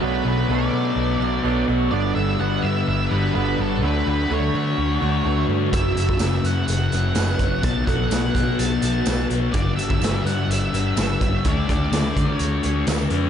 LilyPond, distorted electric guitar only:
\new Staff \with { instrumentName = "Distorted electric guitar" } { \clef bass \time 4/4 \key d \major \tempo 4 = 126 <b, fis b>8 <fis b>8 <b, fis b>4. <fis b>8 <b, fis b>8 <fis b>8 | <g, d g>8 <d g>8 <g, d g>4. <d g>8 <g, d g>8 <d g>8 | <d a d'>8 <a d'>8 <d a d'>4. <a d'>8 <d a d'>8 <a d'>8 | <fis, cis fis>8 <cis fis>8 <fis, cis fis>4. <cis fis>8 <fis, cis fis>8 <cis fis>8 |
<b, fis b>8 <fis b>8 <b, fis b>4. <fis b>8 <b, fis b>8 <fis b>8 | <g, d g>8 <d g>8 <g, d g>4. <d g>8 <g, d g>8 <d g>8 | <d a d'>8 <a d'>8 <d a d'>4. <a d'>8 <d a d'>8 <a d'>8 | }